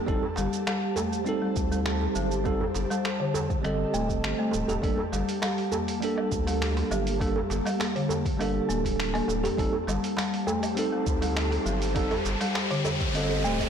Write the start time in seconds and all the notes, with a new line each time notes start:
Already playing: G4 A5
0.07 G1 G3 C4 D#4 A4 C5, kick, cabasa
0.23 djembe bass
0.36 G1 G3, djembe slap, cabasa
0.53 cabasa
0.67 G3, finger snap, djembe slap, cabasa
0.96 A3, djembe bass, cabasa
1.13 cabasa
1.25 G3 C4 D#4, cabasa
1.29 A4
1.42 G3
1.56 D2, kick, cabasa
1.71 G3, djembe tone, cabasa
1.86 finger snap, djembe slap, cabasa
2.01 djembe slap, djembe tone
2.15 G1 F#3, cabasa
2.31 cabasa
2.44 G3 C4 D#4 A4, kick, cabasa
2.61 djembe bass
2.74 G1, djembe slap, cabasa
2.90 G3, djembe slap, djembe tone, cabasa
3.05 finger snap, djembe slap, cabasa
3.20 D3
3.34 djembe bass, cabasa
3.50 kick, cabasa
3.62 G1 G3 C4 D#5, finger snap, cabasa
3.66 A4
3.94 D1 A3, cabasa
4.08 kick, djembe tone, cabasa
4.24 G1, finger snap, cabasa
4.39 A3
4.51 D1, djembe tone, cabasa
4.68 D1 G4, djembe tone, djembe bass, cabasa
4.82 G1 G3 A#3 D4 A4, kick, open hi-hat, cabasa
4.98 djembe bass
5.12 G1 G3, djembe slap, cabasa
5.29 open hi-hat, cabasa
5.42 G3, finger snap, open hi-hat, djembe slap, cabasa, low woodblock
5.58 open hi-hat
5.72 A#3, djembe bass, cabasa
5.88 open hi-hat, cabasa
6.01 G3 A#3 D4 A4, open hi-hat, cabasa
6.17 G3, low woodblock
6.32 D2, kick, cabasa
6.47 G3, open hi-hat, djembe tone, cabasa
6.62 finger snap, open hi-hat, djembe slap, cabasa
6.77 open hi-hat, djembe slap, djembe tone
6.91 G1 F#3, cabasa, low woodblock
7.07 open hi-hat, cabasa
7.20 G3 A#3 D4 A4, kick, open hi-hat, cabasa
7.36 djembe bass
7.50 G1, djembe slap, cabasa
7.65 G3, open hi-hat, djembe slap, djembe tone, cabasa, low woodblock
7.80 finger snap, open hi-hat, djembe slap, cabasa
7.96 D3, open hi-hat
8.09 djembe bass, cabasa
8.26 kick, open hi-hat, cabasa
8.37 G1 G3 A#3 D4 A4, open hi-hat, cabasa, low woodblock
8.69 D1 A#3, cabasa
8.85 kick, open hi-hat, djembe tone, cabasa
9.00 finger snap, open hi-hat, cabasa
9.14 A#3, open hi-hat, low woodblock
9.28 D1, djembe tone, cabasa
9.44 G4, open hi-hat, djembe tone, djembe bass, cabasa
9.58 G1 G3 C4 D#4 G4 A4 C5 A5, kick, open hi-hat, riser, cabasa
9.73 djembe bass
9.87 G1 G3, djembe slap, cabasa, low woodblock
10.04 open hi-hat, cabasa
10.17 G3, finger snap, open hi-hat, djembe slap, cabasa
10.34 open hi-hat
10.47 A3, djembe bass, cabasa
10.63 open hi-hat, cabasa, low woodblock
10.75 G3 C4 D#4 A4, open hi-hat, cabasa
10.92 G3
11.07 D2, kick, cabasa
11.21 G3, open hi-hat, djembe tone, cabasa
11.36 finger snap, open hi-hat, djembe slap, cabasa, low woodblock
11.51 open hi-hat, djembe slap, djembe tone
11.66 G1 F#3, cabasa
11.82 open hi-hat, cabasa
11.95 G3 C4 D#4 A4 G5, kick, open hi-hat, cabasa
12.11 open hi-hat, djembe bass, low woodblock
12.25 G1, djembe slap, cabasa
12.41 G3, open hi-hat, djembe slap, djembe tone, cabasa
12.55 finger snap, open hi-hat, djembe slap, cabasa
12.71 D3, open hi-hat
12.85 djembe bass, cabasa, low woodblock
13.01 kick, open hi-hat, cabasa
13.13 G1 G3 C4 D#5, open hi-hat, cabasa
13.17 A4
13.29 open hi-hat, djembe tone
13.44 D1 A3, cabasa
13.60 kick, open hi-hat, djembe tone, cabasa, low woodblock